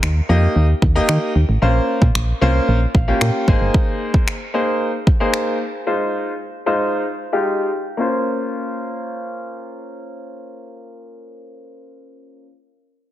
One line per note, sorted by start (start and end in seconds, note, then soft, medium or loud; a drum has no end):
0.03 0.21 D#2 medium
0.03 finger snap loud
0.29 0.47 F2 loud
0.29 0.65 A#3 medium
0.29 0.65 D#4 medium
0.29 0.65 G4 medium
0.29 0.65 D#5 loud
0.56 0.74 D#2 loud
0.82 1.00 D#2 loud
0.82 kick medium
0.95 1.31 A#3 loud
0.95 1.31 D#4 medium
0.95 1.32 G4 medium
0.95 1.32 D#5 loud
1.09 1.18 D#3 loud
1.09 finger snap loud
1.36 1.45 D#2 medium
1.49 1.58 A1 medium
1.62 1.80 A#1 loud
1.62 2.05 A#3 medium
1.62 2.05 C#4 medium
1.62 2.05 F4 medium
1.62 2.05 C5 medium
2.02 2.11 A#2 medium
2.02 kick medium
2.15 2.33 A#1 medium
2.15 finger snap loud
2.41 2.60 C2 medium
2.41 2.77 A#3 loud
2.41 2.77 C#4 medium
2.41 2.78 F4 medium
2.41 2.78 C5 loud
2.68 2.86 A#1 loud
2.95 3.13 A#1 medium
2.95 3.19 F5 medium
2.95 kick medium
3.08 3.44 A#3 medium
3.08 3.44 C#4 medium
3.08 3.44 F4 medium
3.08 3.44 G4 loud
3.21 3.30 A#2 loud
3.21 finger snap loud
3.48 3.57 G#1 loud
3.48 4.33 A#3 medium
3.48 4.33 D#4 medium
3.48 4.33 G#4 medium
3.48 4.33 C5 loud
3.48 3.73 G#5 medium
3.48 kick medium
3.61 3.70 G1 medium
3.74 kick loud
4.14 kick medium
4.28 finger snap loud
4.54 4.90 A#3 medium
4.54 4.90 D#4 medium
4.54 4.90 G#4 medium
4.54 4.90 C5 loud
5.07 kick medium
5.20 5.56 A#3 medium
5.20 5.56 D#4 medium
5.20 5.56 G#4 medium
5.20 5.56 C5 loud
5.34 finger snap loud
5.87 6.30 G#3 medium
5.87 6.30 D#4 medium
5.87 6.30 F4 medium
5.87 6.30 C5 medium
6.66 7.02 G#3 medium
6.66 7.02 D#4 medium
6.66 7.02 F4 medium
6.66 7.02 C5 loud
7.33 7.69 G#3 medium
7.33 7.69 D#4 medium
7.33 7.69 F4 medium
7.33 7.69 G4 medium
7.97 12.43 A#3 medium
7.97 12.45 C#4 medium
7.97 12.46 F4 medium
8.01 12.47 C5 medium